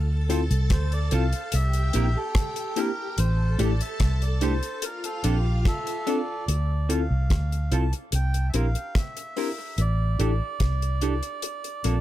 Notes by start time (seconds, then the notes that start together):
Already playing: D2 A4 A5
0.29 C4 E4 F4 A4, closed hi-hat
0.51 C2, closed hi-hat
0.70 C5, kick, cross-stick, closed hi-hat
0.92 D5, closed hi-hat
1.11 C2 C4 E4 F4 A4 F5, closed hi-hat
1.32 closed hi-hat
1.52 C2 G4 E5 G5, closed hi-hat
1.73 closed hi-hat
1.93 A#1 A#3 C4 D4 E4 G4 A#4, closed hi-hat
2.16 A4, muted clean electric guitar stroke
2.35 kick, cross-stick, closed hi-hat
2.56 closed hi-hat
2.76 A#3 C4 D4 E4 G4 A#4, closed hi-hat
2.98 E4 G4
3.18 A1 A4 C5 A5, closed hi-hat
3.59 A1 A3 D4 E4 G4 A4 D5, closed hi-hat
3.81 E5, closed hi-hat
4.00 C2, kick, cross-stick, closed hi-hat
4.22 D5, closed hi-hat
4.41 A3 D4 E4 G4 A4 C5, closed hi-hat
4.63 closed hi-hat
4.82 F4 A#4 F5, closed hi-hat
5.04 A4, closed hi-hat
5.24 A#1 C4 D4 F4 G4 A4, closed hi-hat
5.45 muted clean electric guitar stroke
5.65 A4 E5, kick, cross-stick, closed hi-hat
5.87 closed hi-hat
6.07 C4 D4 F4 A4 D5, closed hi-hat
6.28 F4 A4
6.48 D2, closed hi-hat
6.89 C4 E4 F4 A4 F5, closed hi-hat
7.10 C2
7.30 D2, kick, cross-stick, closed hi-hat
7.52 closed hi-hat
7.71 C2 C4 E4 F4 A4 A5, closed hi-hat
7.93 closed hi-hat
8.12 C2 G5, closed hi-hat
8.34 closed hi-hat
8.49 E5
8.54 A#1 C4 D4 E4 G4 A#4 F5, closed hi-hat
8.75 closed hi-hat
8.95 E5, kick, cross-stick, closed hi-hat
9.17 closed hi-hat
9.36 C4 D4 E4 G4 A#4, open hi-hat
9.58 muted clean electric guitar stroke
9.78 A1 D5, closed hi-hat
10.19 A1 D4 E4 G4 A4, closed hi-hat
10.60 C2, kick, cross-stick, closed hi-hat
10.82 closed hi-hat
11.01 D4 E4 G4 A4, closed hi-hat
11.23 closed hi-hat
11.42 closed hi-hat
11.64 closed hi-hat
11.84 A#1 A#3 C4 D4 F4 A4, closed hi-hat